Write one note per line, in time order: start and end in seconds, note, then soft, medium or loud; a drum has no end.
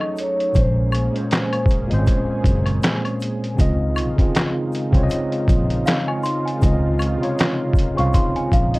0.00 0.52 F#3 medium
0.00 0.57 F#3 medium
0.00 0.52 A3 medium
0.00 0.56 C#4 medium
0.00 0.52 D#4 medium
0.00 0.57 D#4 medium
0.00 0.57 G#4 medium
0.00 0.57 A4 medium
0.00 0.19 D#5 loud
0.00 high woodblock medium
0.16 0.57 C#5 medium
0.16 closed hi-hat medium
0.16 shaker medium
0.40 closed hi-hat soft
0.52 1.08 A#1 loud
0.52 0.89 A#2 medium
0.52 0.90 G#3 medium
0.52 3.56 A#3 medium
0.52 3.56 C#4 medium
0.52 3.56 G#4 medium
0.52 kick loud
0.52 closed hi-hat medium
0.52 shaker medium
0.56 0.91 C#4 medium
0.56 2.80 C5 medium
0.56 0.92 C5 medium
0.92 closed hi-hat medium
0.92 high woodblock medium
0.92 shaker medium
1.11 1.59 A#2 medium
1.11 1.60 G#3 medium
1.15 1.61 C#4 medium
1.15 1.62 C5 medium
1.15 closed hi-hat soft
1.31 snare loud
1.31 clap medium
1.31 closed hi-hat medium
1.31 shaker medium
1.53 closed hi-hat soft
1.53 high woodblock medium
1.66 kick loud
1.66 shaker soft
1.71 closed hi-hat medium
1.88 2.80 A#2 medium
1.88 2.81 G#3 medium
1.88 closed hi-hat soft
1.92 2.06 G#1 medium
1.92 1.97 C4 medium
1.92 2.83 C5 medium
1.98 2.86 C#4 medium
2.06 kick medium
2.06 closed hi-hat medium
2.06 shaker medium
2.44 2.79 F#1 medium
2.44 kick medium
2.44 closed hi-hat medium
2.44 shaker soft
2.66 closed hi-hat soft
2.66 high woodblock medium
2.83 snare loud
2.83 clap medium
2.83 closed hi-hat medium
2.83 shaker medium
3.05 closed hi-hat soft
3.05 high woodblock medium
3.20 closed hi-hat medium
3.20 shaker medium
3.44 closed hi-hat soft
3.55 3.92 C#3 medium
3.55 8.79 D#3 medium
3.55 8.79 G#3 medium
3.55 3.93 C4 medium
3.55 8.79 D#4 medium
3.55 8.79 F4 medium
3.55 3.94 F4 medium
3.55 kick medium
3.55 shaker medium
3.59 4.12 C#2 loud
3.59 3.95 D#5 medium
3.59 closed hi-hat medium
3.96 closed hi-hat medium
3.96 high woodblock medium
3.96 shaker medium
4.16 4.63 C#3 medium
4.16 4.64 C4 medium
4.16 kick medium
4.16 closed hi-hat soft
4.20 4.65 F4 medium
4.20 4.66 G#4 medium
4.35 snare loud
4.35 clap medium
4.35 closed hi-hat medium
4.35 shaker medium
4.72 closed hi-hat medium
4.72 shaker soft
4.91 5.08 C2 medium
4.91 5.84 C#3 medium
4.91 5.85 C4 medium
4.91 kick medium
4.91 closed hi-hat soft
4.95 5.86 F4 medium
4.95 5.01 C#5 medium
5.03 5.90 D#5 loud
5.10 closed hi-hat medium
5.10 shaker medium
5.32 closed hi-hat soft
5.48 5.82 A#1 medium
5.48 kick medium
5.48 closed hi-hat medium
5.48 shaker soft
5.70 closed hi-hat soft
5.86 6.07 F5 medium
5.86 snare loud
5.86 clap medium
5.86 closed hi-hat medium
5.86 shaker medium
6.08 6.23 G#5 medium
6.08 high woodblock medium
6.23 6.45 C6 medium
6.23 closed hi-hat medium
6.23 shaker medium
6.46 7.56 G#5 medium
6.46 closed hi-hat soft
6.60 7.16 C#2 loud
6.60 6.97 C#3 medium
6.60 6.98 C4 medium
6.60 kick loud
6.60 closed hi-hat medium
6.60 shaker medium
6.64 6.99 F4 medium
6.64 7.00 D#5 medium
6.99 closed hi-hat medium
6.99 high woodblock medium
6.99 shaker medium
7.18 7.67 C3 medium
7.18 7.66 C#3 medium
7.22 7.68 F4 medium
7.22 7.69 C#5 medium
7.22 closed hi-hat soft
7.39 snare loud
7.39 clap medium
7.39 closed hi-hat medium
7.39 shaker medium
7.74 kick medium
7.74 shaker soft
7.79 closed hi-hat medium
7.94 8.79 C#3 medium
7.94 8.79 C4 medium
7.94 8.13 C#6 medium
7.98 8.13 C2 medium
7.98 8.79 F4 medium
7.98 8.79 F5 medium
7.98 closed hi-hat soft
8.14 8.35 C6 medium
8.14 kick medium
8.14 closed hi-hat medium
8.14 shaker medium
8.36 8.52 G#5 medium
8.36 closed hi-hat soft
8.52 8.79 A#1 medium
8.52 8.73 F5 medium
8.52 kick medium
8.52 closed hi-hat medium
8.52 shaker soft
8.74 8.79 D#5 medium
8.74 closed hi-hat medium